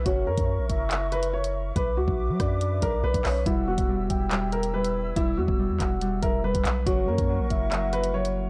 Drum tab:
HH |x--x--x-x-xx-x--|x-----x-x-x--xo-|x--x--x-x-xx-x--|x-----x-x-x--xx-|
CP |--------x-------|--------------x-|--------x-------|------x-------x-|
SD |----------------|------r-------r-|----------------|----------------|
BD |o--o--o---------|o--o--o---o--o--|o--o--o---------|o--o--o---o--o--|

HH |x--x--x-x-xx-x--|
CP |--------x-------|
SD |----------------|
BD |o--o--o---------|